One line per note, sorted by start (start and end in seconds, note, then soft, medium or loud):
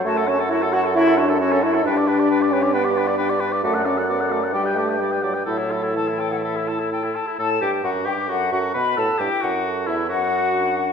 0.05 1.81 F#2 medium
0.05 0.26 A3 medium
0.05 0.19 F#4 medium
0.05 0.19 C#5 medium
0.05 0.19 A5 medium
0.17 0.29 A4 medium
0.17 0.30 A4 medium
0.17 0.31 F#5 medium
0.27 0.38 C#4 medium
0.27 0.41 F#4 medium
0.27 0.41 C#5 medium
0.27 0.42 A5 medium
0.39 0.50 A4 medium
0.39 0.52 F#5 soft
0.49 0.60 E4 medium
0.49 0.64 F#4 medium
0.49 0.64 C#5 medium
0.49 0.65 A5 medium
0.62 0.75 A4 medium
0.62 0.76 A4 medium
0.62 0.77 F#5 medium
0.73 0.83 F#4 loud
0.73 0.86 F#4 medium
0.73 0.86 C#5 medium
0.73 0.88 A5 medium
0.85 0.95 A4 medium
0.85 0.97 F#5 medium
0.95 1.16 E4 loud
0.95 1.08 F#4 medium
0.95 1.10 C#5 medium
0.95 1.09 A5 medium
1.07 1.20 A4 medium
1.07 1.21 F#5 medium
1.17 1.39 D4 medium
1.17 1.30 F#4 medium
1.17 1.31 C#5 medium
1.17 1.32 A5 medium
1.29 1.39 A4 medium
1.29 1.40 A4 medium
1.29 1.40 F#5 medium
1.40 1.64 C#4 loud
1.40 1.53 F#4 medium
1.40 1.54 C#5 medium
1.40 1.53 A5 medium
1.52 1.64 A4 medium
1.52 1.65 A4 medium
1.52 1.65 F#5 medium
1.62 1.86 E4 loud
1.62 1.74 F#4 medium
1.62 1.77 C#5 medium
1.62 1.76 A5 medium
1.73 1.83 A4 medium
1.73 1.85 A4 medium
1.73 1.85 F#5 medium
1.84 3.59 G2 medium
1.84 1.97 D4 medium
1.84 2.52 D4 medium
1.84 1.99 B4 medium
1.84 1.98 G5 medium
1.96 2.09 G4 medium
1.96 2.09 D5 medium
2.07 2.20 D4 medium
2.07 2.21 B4 medium
2.07 2.21 G5 medium
2.18 2.29 G4 medium
2.18 2.29 D5 soft
2.18 2.30 D5 medium
2.29 2.43 D4 medium
2.29 2.44 B4 medium
2.29 2.42 G5 medium
2.41 2.53 G4 medium
2.41 2.52 D5 medium
2.41 2.55 D5 medium
2.51 2.75 C#4 loud
2.51 2.64 D4 medium
2.51 2.64 B4 medium
2.51 2.63 G5 medium
2.62 2.73 G4 medium
2.62 2.72 D5 medium
2.62 2.73 D5 soft
2.73 3.35 B3 medium
2.73 2.85 D4 medium
2.73 2.87 B4 medium
2.73 2.86 G5 medium
2.84 2.97 G4 medium
2.84 2.97 D5 medium
2.84 2.99 D5 medium
2.95 3.09 D4 medium
2.95 3.09 B4 medium
2.95 3.09 G5 medium
3.07 3.18 G4 soft
3.07 3.18 D5 soft
3.07 3.17 D5 medium
3.18 3.31 D4 medium
3.18 3.31 B4 medium
3.18 3.32 G5 medium
3.30 3.42 G4 medium
3.30 3.42 D5 medium
3.40 3.54 D4 medium
3.40 3.54 B4 medium
3.40 3.54 G5 soft
3.52 3.63 G4 medium
3.52 3.63 D5 medium
3.52 3.63 D5 soft
3.63 4.54 F#2 medium
3.63 3.84 A3 medium
3.63 3.76 F#4 medium
3.63 3.76 D5 medium
3.63 3.76 F#5 medium
3.74 3.88 A4 soft
3.74 3.88 D5 soft
3.74 3.87 F#5 medium
3.85 3.95 C#4 medium
3.85 3.98 F#4 medium
3.85 4.00 D5 medium
3.85 3.99 F#5 medium
3.97 4.08 A4 soft
3.97 4.07 D5 soft
3.97 4.09 F#5 soft
4.08 4.18 B3 medium
4.08 4.21 F#4 medium
4.08 4.22 D5 medium
4.08 4.21 F#5 soft
4.19 4.32 A4 soft
4.19 4.31 D5 soft
4.19 4.34 F#5 soft
4.30 4.41 A3 medium
4.30 4.42 F#4 soft
4.30 4.46 D5 soft
4.30 4.42 F#5 soft
4.41 4.53 A4 soft
4.41 4.52 D5 soft
4.41 4.53 F#5 soft
4.52 5.47 G2 medium
4.52 4.77 G3 medium
4.52 4.67 G4 medium
4.52 4.68 D5 soft
4.52 4.65 G5 medium
4.64 4.78 B4 soft
4.64 4.76 D5 soft
4.64 4.80 G5 soft
4.75 5.00 A3 medium
4.75 4.90 G4 soft
4.75 4.91 D5 soft
4.75 4.87 G5 soft
4.86 4.99 B4 soft
4.86 4.97 D5 soft
4.86 5.00 G5 soft
4.98 5.22 G3 medium
4.98 5.12 G4 soft
4.98 5.14 D5 soft
4.98 5.13 G5 soft
5.11 5.23 B4 soft
5.11 5.23 D5 soft
5.11 5.24 G5 soft
5.22 5.34 F#3 medium
5.22 5.36 G4 soft
5.22 5.36 D5 soft
5.22 5.37 G5 soft
5.34 5.46 B4 soft
5.34 5.47 D5 soft
5.34 5.45 G5 soft
5.46 7.11 A2 medium
5.46 5.96 F#3 medium
5.46 5.61 E4 soft
5.46 5.60 A4 soft
5.46 5.60 E5 soft
5.58 5.73 E4 soft
5.58 5.72 A4 soft
5.58 5.72 C#5 soft
5.70 5.84 E4 soft
5.70 5.85 A4 soft
5.70 5.85 E5 soft
5.82 5.95 E4 soft
5.82 5.94 A4 soft
5.82 5.94 C#5 soft
5.95 6.90 E3 soft
5.95 6.08 E4 soft
5.95 6.10 A4 soft
5.95 6.20 A5 medium
6.06 6.22 E4 soft
6.06 6.20 A4 soft
6.18 6.33 E4 soft
6.18 6.33 A4 soft
6.18 6.31 G5 medium
6.32 6.43 E4 soft
6.32 6.43 A4 soft
6.32 6.37 F#5 soft
6.42 6.57 E4 soft
6.42 6.58 A4 soft
6.42 6.69 E5 medium
6.56 6.70 E4 soft
6.56 6.69 A4 soft
6.67 6.81 E4 soft
6.67 6.81 A4 soft
6.67 6.90 A5 soft
6.80 6.91 E4 soft
6.80 6.90 A4 soft
6.91 7.04 E4 soft
6.91 7.05 A4 soft
6.91 7.17 G5 soft
7.03 7.17 E4 soft
7.03 7.17 A4 soft
7.15 7.27 E4 soft
7.15 7.28 A4 soft
7.15 7.39 A5 soft
7.26 7.38 E4 soft
7.26 7.38 A4 soft
7.38 7.60 A2 medium
7.38 7.60 A4 soft
7.38 7.49 A4 medium
7.38 7.64 A5 medium
7.61 7.83 G2 soft
7.61 7.86 G4 soft
7.61 7.71 G4 soft
7.61 7.83 G5 medium
7.84 8.07 F#2 medium
7.84 8.07 F#4 medium
7.84 8.08 F#4 soft
7.84 7.90 F#5 medium
8.06 8.30 G2 soft
8.06 8.31 G4 soft
8.06 8.29 G4 soft
8.06 8.14 G5 medium
8.29 8.51 F#2 medium
8.29 8.40 F#4 medium
8.29 8.51 F#4 medium
8.29 8.71 A4 medium
8.29 8.53 F#5 medium
8.52 8.74 F#2 soft
8.52 8.73 F#4 medium
8.52 8.76 F#4 medium
8.52 8.59 F#5 soft
8.74 8.97 B2 medium
8.74 9.19 F#4 soft
8.74 8.96 B4 medium
8.74 9.00 B4 medium
8.74 9.01 B5 medium
8.97 9.07 A2 soft
8.97 9.20 A4 soft
8.97 9.19 A4 soft
8.97 9.22 A5 medium
9.18 9.30 G2 medium
9.18 9.63 E4 soft
9.18 9.43 G4 medium
9.18 9.42 G4 soft
9.18 9.45 G5 medium
9.42 9.89 F#2 soft
9.42 9.88 F#4 medium
9.42 9.89 F#4 medium
9.42 9.69 F#5 medium
9.64 10.09 A4 soft
9.87 10.10 E2 soft
9.87 10.09 E4 soft
9.87 10.10 E4 soft
9.87 9.95 E5 medium
10.09 10.93 F#2 medium
10.09 10.93 F#4 medium
10.09 10.54 F#4 medium
10.09 10.93 F#4 medium
10.09 10.93 F#5 medium
10.54 10.93 D4 soft